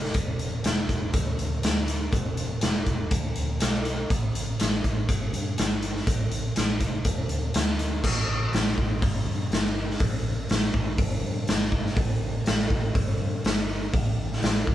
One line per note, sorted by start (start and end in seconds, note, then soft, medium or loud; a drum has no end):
0.04 snare soft
0.14 0.58 E1 medium
0.14 kick loud
0.14 closed hi-hat medium
0.39 closed hi-hat medium
0.64 0.86 E1 medium
0.64 snare loud
0.64 closed hi-hat medium
0.89 1.11 E1 medium
0.89 kick medium
0.89 closed hi-hat medium
1.13 1.36 D2 medium
1.13 kick loud
1.13 closed hi-hat medium
1.39 1.61 D2 medium
1.39 closed hi-hat medium
1.63 2.06 D2 medium
1.63 snare loud
1.63 closed hi-hat medium
1.88 closed hi-hat medium
2.12 2.56 E1 medium
2.12 kick loud
2.12 closed hi-hat medium
2.37 closed hi-hat medium
2.61 2.84 E1 medium
2.61 snare loud
2.61 closed hi-hat medium
2.86 3.08 E1 medium
2.86 kick medium
2.86 closed hi-hat medium
3.11 3.33 D2 medium
3.11 kick loud
3.11 closed hi-hat medium
3.35 3.58 D2 medium
3.35 closed hi-hat medium
3.60 4.04 B1 medium
3.60 snare loud
3.60 closed hi-hat medium
3.85 closed hi-hat medium
4.10 4.53 A1 medium
4.10 kick loud
4.10 closed hi-hat medium
4.35 closed hi-hat medium
4.59 4.81 A1 medium
4.59 snare loud
4.59 closed hi-hat medium
4.84 5.06 A1 medium
4.84 kick medium
4.84 closed hi-hat soft
5.09 5.30 G1 medium
5.09 kick loud
5.09 closed hi-hat medium
5.33 5.55 G2 medium
5.33 closed hi-hat soft
5.57 6.01 G1 medium
5.57 snare loud
5.57 closed hi-hat medium
5.82 closed hi-hat medium
5.96 snare soft
6.07 6.50 A1 medium
6.07 kick loud
6.07 closed hi-hat medium
6.31 closed hi-hat medium
6.56 6.78 A1 medium
6.56 snare loud
6.56 closed hi-hat medium
6.80 7.03 F1 medium
6.80 kick medium
6.80 closed hi-hat medium
7.05 7.27 E1 medium
7.05 kick loud
7.05 closed hi-hat medium
7.29 7.51 D2 medium
7.29 closed hi-hat medium
7.54 8.05 D2 medium
7.54 snare loud
7.54 closed hi-hat medium
7.79 closed hi-hat medium
8.03 8.47 A1 medium
8.03 kick loud
8.03 crash loud
8.53 8.75 A1 medium
8.53 snare loud
8.53 open hi-hat medium
8.77 8.99 A1 medium
8.77 kick medium
9.02 9.24 G1 medium
9.02 kick loud
9.02 open hi-hat medium
9.27 9.49 G2 medium
9.51 9.94 G1 medium
9.51 snare loud
9.51 open hi-hat medium
9.90 snare soft
10.00 10.44 A1 medium
10.00 kick loud
10.00 open hi-hat medium
10.49 10.71 A1 medium
10.49 snare loud
10.49 open hi-hat medium
10.74 10.96 A1 medium
10.74 kick medium
10.98 11.20 G1 medium
10.98 kick loud
10.98 open hi-hat medium
11.23 11.45 G2 medium
11.47 11.91 G1 medium
11.47 snare loud
11.47 open hi-hat medium
11.72 kick medium
11.86 snare soft
11.97 12.40 A1 medium
11.97 kick loud
11.97 open hi-hat medium
12.46 12.69 A1 medium
12.46 snare loud
12.46 open hi-hat medium
12.70 12.92 A1 medium
12.70 kick medium
12.95 13.17 G1 loud
12.95 kick loud
12.95 open hi-hat medium
13.20 13.42 G2 medium
13.44 13.87 G1 medium
13.44 snare loud
13.44 open hi-hat medium
13.93 14.36 A1 loud
13.93 kick loud
13.93 open hi-hat medium
14.33 snare soft
14.42 14.64 A1 medium
14.42 snare loud
14.42 open hi-hat medium
14.67 14.75 A1 medium
14.67 kick medium